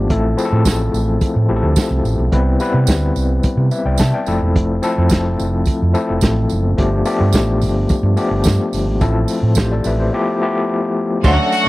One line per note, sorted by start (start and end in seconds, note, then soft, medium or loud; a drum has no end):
0.00 0.10 F3 medium
0.00 0.11 A3 medium
0.00 0.12 B3 medium
0.00 0.12 D4 medium
0.00 0.12 F4 medium
0.00 0.12 G4 medium
0.10 0.31 A1 loud
0.10 0.31 F3 medium
0.10 0.31 A3 medium
0.10 0.32 C4 medium
0.10 0.32 E4 medium
0.10 0.32 A4 medium
0.10 kick loud
0.10 closed hi-hat medium
0.37 1.22 F3 medium
0.37 1.22 A3 medium
0.37 1.22 C4 medium
0.37 1.22 E4 medium
0.37 0.45 G#4 medium
0.37 tambourine soft
0.45 1.26 A4 medium
0.52 0.63 A2 medium
0.65 0.86 A1 medium
0.65 kick medium
0.65 snare loud
0.65 closed hi-hat medium
0.65 tambourine medium
0.94 1.14 A1 medium
0.94 tambourine soft
1.21 kick loud
1.21 closed hi-hat medium
1.21 tambourine soft
1.36 1.46 A2 medium
1.48 1.60 A1 medium
1.48 2.12 F3 medium
1.48 2.12 A3 medium
1.48 2.12 C4 medium
1.48 2.12 E4 medium
1.48 1.56 G4 medium
1.56 2.16 A4 medium
1.63 1.74 D2 medium
1.76 kick loud
1.76 snare loud
1.76 closed hi-hat medium
1.76 tambourine medium
1.91 2.01 C2 medium
2.05 2.15 A1 medium
2.05 tambourine soft
2.19 2.29 B1 medium
2.31 2.54 C2 medium
2.31 2.53 G3 medium
2.31 2.53 B3 medium
2.31 2.54 C4 medium
2.31 2.54 E4 medium
2.31 2.54 B4 medium
2.31 kick medium
2.31 closed hi-hat medium
2.60 3.45 G3 medium
2.60 3.45 B3 medium
2.60 3.45 C4 medium
2.60 3.45 E4 medium
2.60 3.45 B4 medium
2.60 tambourine soft
2.74 2.85 C3 medium
2.87 3.09 D2 medium
2.87 kick loud
2.87 snare loud
2.87 closed hi-hat medium
2.87 tambourine medium
3.16 3.37 C2 medium
3.16 tambourine soft
3.43 muted fingered electric bass stroke soft
3.43 kick loud
3.43 closed hi-hat medium
3.43 tambourine soft
3.57 3.68 C3 loud
3.71 3.85 B4 medium
3.71 3.85 E5 medium
3.71 tambourine soft
3.85 3.96 C2 medium
3.85 3.99 D5 medium
3.85 3.99 G5 medium
3.98 4.11 C3 medium
3.98 4.14 E5 medium
3.98 4.13 A5 medium
3.98 kick medium
3.98 snare loud
3.98 closed hi-hat medium
3.98 tambourine medium
4.14 4.41 D5 soft
4.14 4.40 G5 medium
4.26 4.38 F1 loud
4.26 4.72 F3 medium
4.26 4.72 A3 medium
4.26 4.72 C4 medium
4.26 4.72 E4 medium
4.26 4.73 A4 medium
4.26 tambourine soft
4.42 4.56 E1 medium
4.56 4.77 F1 medium
4.56 kick loud
4.56 closed hi-hat medium
4.82 5.67 F3 medium
4.82 5.67 A3 medium
4.82 5.67 C4 medium
4.82 5.67 E4 medium
4.82 5.68 A4 medium
4.82 tambourine soft
4.98 5.08 F2 medium
5.10 5.32 F1 medium
5.10 kick loud
5.10 snare loud
5.10 closed hi-hat medium
5.10 tambourine medium
5.40 5.61 F1 loud
5.40 tambourine soft
5.66 muted fingered electric bass stroke soft
5.66 kick medium
5.66 closed hi-hat medium
5.66 tambourine soft
5.82 5.92 F2 medium
5.93 6.57 F3 medium
5.93 6.57 A3 medium
5.93 6.57 C4 medium
5.93 6.58 E4 medium
5.93 6.58 A4 medium
5.93 tambourine soft
6.10 6.20 F1 medium
6.21 6.43 A1 medium
6.21 kick loud
6.21 snare loud
6.21 closed hi-hat medium
6.21 tambourine medium
6.50 6.73 F#1 medium
6.50 tambourine soft
6.77 6.99 G1 medium
6.77 6.99 F3 medium
6.77 6.99 A3 medium
6.77 6.99 B3 medium
6.77 7.00 D4 medium
6.77 7.00 G4 medium
6.77 kick medium
6.77 closed hi-hat medium
7.05 7.90 F3 medium
7.05 7.90 A3 medium
7.05 7.90 B3 medium
7.05 7.91 D4 medium
7.05 7.91 G4 medium
7.05 open hi-hat medium
7.05 tambourine medium
7.21 7.31 G2 medium
7.33 7.64 A1 medium
7.33 kick loud
7.33 snare loud
7.33 closed hi-hat medium
7.33 tambourine medium
7.62 7.83 G1 medium
7.62 open hi-hat medium
7.62 tambourine soft
7.89 muted fingered electric bass stroke medium
7.89 kick loud
7.89 closed hi-hat medium
7.89 tambourine soft
8.03 8.14 G2 loud
8.16 8.80 F3 medium
8.16 8.80 A3 medium
8.16 8.80 B3 medium
8.16 8.81 D4 medium
8.16 8.81 G4 medium
8.16 open hi-hat medium
8.16 tambourine soft
8.31 8.42 G1 medium
8.44 8.56 G2 medium
8.44 kick loud
8.44 snare loud
8.44 closed hi-hat medium
8.44 tambourine medium
8.73 8.87 G1 medium
8.73 open hi-hat medium
8.73 tambourine soft
8.87 8.98 G#1 medium
9.01 9.22 A1 medium
9.01 9.22 F3 medium
9.01 9.22 A3 medium
9.01 9.22 C4 medium
9.01 9.23 E4 medium
9.01 9.23 A4 medium
9.01 kick loud
9.01 closed hi-hat medium
9.01 tambourine soft
9.28 open hi-hat medium
9.28 tambourine soft
9.43 9.53 A2 medium
9.55 9.78 A1 medium
9.55 9.71 G4 medium
9.55 9.70 C5 medium
9.55 kick loud
9.55 snare loud
9.55 closed hi-hat medium
9.55 tambourine medium
9.72 9.85 A4 medium
9.72 9.85 D5 medium
9.84 10.06 A1 medium
9.84 9.99 B4 medium
9.84 9.99 E5 medium
9.84 open hi-hat medium
9.84 tambourine soft
9.99 10.13 G4 soft
9.99 10.26 C5 medium
10.13 10.35 F3 medium
10.13 10.35 A3 medium
10.13 10.35 B3 medium
10.13 10.36 E4 medium
10.13 10.36 G4 loud
10.41 11.04 F3 medium
10.41 11.04 A3 medium
10.41 11.04 B3 medium
10.41 11.04 E4 medium
10.41 11.04 G4 medium
11.23 11.35 D2 loud
11.23 11.69 F#3 medium
11.23 11.44 A3 medium
11.23 11.69 A3 medium
11.23 11.69 C#4 medium
11.23 11.39 D4 medium
11.23 11.69 D4 medium
11.23 11.38 F#4 medium
11.23 11.69 F#4 loud
11.23 11.69 A4 medium
11.23 11.38 C#5 loud
11.23 11.69 F#5 loud
11.23 kick loud
11.23 crash loud
11.23 tambourine soft
11.39 muted clean electric guitar stroke soft
11.52 muted clean electric guitar stroke soft
11.52 open hi-hat medium
11.52 tambourine soft
11.65 closed hi-hat soft